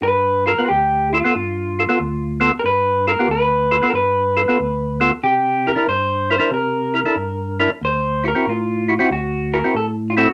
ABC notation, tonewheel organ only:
X:1
M:4/4
L:1/16
Q:"Swing" 1/4=93
K:Gmix
V:1 name="Tonewheel organ"
z2 [FA] [B,FB] z2 [FA] [B,FA] z2 [FA] [B,FA] z2 [B,FA] z | z2 [FA] [B,FG] z2 [FA] [B,FA] z2 [FA] [B,FA] z2 [B,FA] z | z2 [E_B] [DEB] z2 [EB] [DEB] z2 [EB] [DEA] z2 [DEB] z | z2 [E^F] [CEF] z2 [EF] [CEF] z2 [EF] [CEF] z2 [CEA] z |]
V:2 name="Tonewheel organ" clef=bass
G,,4 D,,4 G,,4 D,,4 | G,,4 D,,4 G,,4 D,,4 | C,4 G,,4 C,4 G,,4 | D,,4 A,,4 D,,4 A,,4 |]